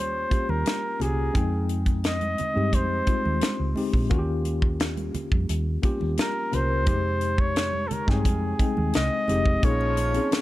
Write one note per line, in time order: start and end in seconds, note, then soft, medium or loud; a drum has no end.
0.00 0.24 D#2 medium
0.00 0.30 A#3 medium
0.00 0.31 C#4 medium
0.00 0.31 F4 medium
0.00 0.32 G4 loud
0.00 0.51 C5 loud
0.30 0.84 A#3 medium
0.30 0.84 C#4 medium
0.30 0.84 F4 medium
0.30 0.85 G4 medium
0.30 kick medium
0.30 closed hi-hat medium
0.30 high conga soft
0.49 0.63 D#2 medium
0.49 1.03 A#4 medium
0.49 high conga medium
0.66 snare loud
0.66 closed hi-hat loud
0.66 high conga medium
0.99 1.28 C2 medium
0.99 1.26 A#3 medium
0.99 1.27 C#4 medium
0.99 1.27 F4 medium
0.99 1.27 G4 medium
0.99 1.70 G#4 medium
0.99 closed hi-hat medium
0.99 muted conga soft
0.99 low conga medium
1.33 2.35 F2 loud
1.33 2.27 G#3 medium
1.33 2.27 C4 medium
1.33 2.28 D#4 medium
1.33 2.28 G5 medium
1.33 kick loud
1.33 closed hi-hat medium
1.33 low conga medium
1.69 closed hi-hat medium
1.86 kick medium
1.86 closed hi-hat soft
2.04 2.76 D#5 medium
2.04 snare loud
2.04 closed hi-hat medium
2.04 muted conga soft
2.21 closed hi-hat soft
2.21 high conga medium
2.38 muted fingered electric bass stroke soft
2.38 closed hi-hat medium
2.38 muted conga soft
2.38 low conga medium
2.54 2.73 G2 medium
2.54 2.95 G#3 medium
2.54 2.95 C4 medium
2.54 2.95 D#4 medium
2.54 2.96 G4 medium
2.54 high conga medium
2.73 3.00 F2 medium
2.73 3.77 C5 medium
2.73 kick medium
2.73 closed hi-hat medium
2.73 muted conga soft
2.73 high conga medium
3.06 3.60 G#3 medium
3.06 3.60 C4 medium
3.06 3.61 D#4 medium
3.06 3.61 F4 medium
3.06 kick medium
3.06 closed hi-hat medium
3.06 high conga soft
3.25 3.39 D#2 medium
3.25 high conga medium
3.41 snare medium
3.41 closed hi-hat loud
3.41 muted conga soft
3.41 high conga medium
3.60 3.73 C#2 medium
3.76 4.03 G#3 medium
3.76 4.03 C4 medium
3.76 4.03 D#4 medium
3.76 4.04 G4 medium
3.76 open hi-hat medium
3.76 muted conga soft
3.76 low conga medium
3.93 4.07 A#1 medium
3.93 kick medium
4.10 5.11 D#2 loud
4.10 5.16 A#3 loud
4.10 5.17 C#4 medium
4.10 5.17 F4 medium
4.10 4.18 F#4 loud
4.10 kick loud
4.10 closed hi-hat medium
4.10 low conga medium
4.19 5.21 G4 loud
4.45 closed hi-hat medium
4.45 muted conga soft
4.62 kick medium
4.80 snare loud
4.80 closed hi-hat medium
4.80 muted conga soft
4.97 closed hi-hat soft
4.97 high conga medium
5.14 muted fingered electric bass stroke soft
5.14 closed hi-hat medium
5.14 muted conga soft
5.14 low conga medium
5.32 5.45 F2 medium
5.32 kick medium
5.32 high conga medium
5.49 5.76 D#2 medium
5.49 closed hi-hat medium
5.49 muted conga soft
5.49 high conga medium
5.83 6.36 A#3 medium
5.83 6.36 C#4 medium
5.83 6.37 F4 medium
5.83 6.37 G4 medium
5.83 kick medium
5.83 closed hi-hat medium
5.83 muted conga soft
5.83 high conga soft
6.01 6.15 D#2 medium
6.01 high conga medium
6.17 6.56 A#4 medium
6.17 snare loud
6.17 closed hi-hat medium
6.17 high conga medium
6.51 6.87 C2 medium
6.51 6.78 A#3 medium
6.51 6.79 C#4 medium
6.51 6.79 F4 medium
6.51 6.80 A#4 medium
6.51 7.42 C5 loud
6.51 closed hi-hat medium
6.51 low conga medium
6.86 7.87 F2 loud
6.86 7.79 C3 medium
6.86 6.93 G3 medium
6.86 7.80 D#4 medium
6.86 7.80 G4 medium
6.86 kick loud
6.86 closed hi-hat medium
6.86 muted conga soft
6.86 low conga medium
6.92 7.82 G#3 medium
7.21 closed hi-hat medium
7.38 7.89 C#5 loud
7.38 kick medium
7.56 snare loud
7.56 closed hi-hat medium
7.56 muted conga soft
7.73 high conga medium
7.88 7.94 A4 medium
7.88 muted fingered electric bass stroke soft
7.88 closed hi-hat medium
7.88 muted conga soft
7.88 low conga medium
7.93 8.11 A#4 medium
8.07 8.26 G2 medium
8.07 8.47 G#3 medium
8.07 8.47 C4 medium
8.07 8.48 D#4 medium
8.07 8.95 G#4 medium
8.07 8.48 G5 medium
8.07 kick medium
8.07 snare soft
8.07 high conga medium
8.25 8.53 F2 medium
8.25 kick medium
8.25 closed hi-hat medium
8.25 muted conga soft
8.25 high conga medium
8.59 9.12 G#3 medium
8.59 9.12 C4 medium
8.59 9.13 D#4 medium
8.59 9.13 G5 medium
8.59 kick medium
8.59 closed hi-hat medium
8.59 muted conga soft
8.59 high conga soft
8.77 8.91 D#2 medium
8.77 high conga medium
8.93 9.08 C2 medium
8.93 9.66 D#5 loud
8.93 snare loud
8.93 closed hi-hat medium
8.93 high conga medium
9.28 9.56 F1 medium
9.28 9.55 G#3 medium
9.28 9.55 C4 medium
9.28 9.55 D#4 medium
9.28 9.56 G4 medium
9.28 closed hi-hat medium
9.28 muted conga soft
9.28 low conga medium
9.46 kick medium
9.62 10.17 A#1 loud
9.62 10.41 F3 medium
9.62 10.03 A#3 medium
9.62 10.41 C#4 medium
9.62 10.03 C#4 medium
9.62 10.03 D#4 medium
9.62 10.41 F4 medium
9.62 10.04 G#4 medium
9.62 10.33 C#5 loud
9.62 kick loud
9.62 closed hi-hat medium
9.62 muted conga soft
9.62 muted triangle soft
9.81 muted triangle medium
9.97 closed hi-hat medium
9.97 muted conga soft
9.97 triangle medium
10.14 10.41 C4 medium
10.14 10.41 C#4 medium
10.14 10.41 D#4 medium
10.14 10.41 G#4 medium
10.14 closed hi-hat medium
10.14 muted triangle soft
10.31 snare loud
10.31 closed hi-hat medium
10.31 muted conga soft
10.31 muted triangle soft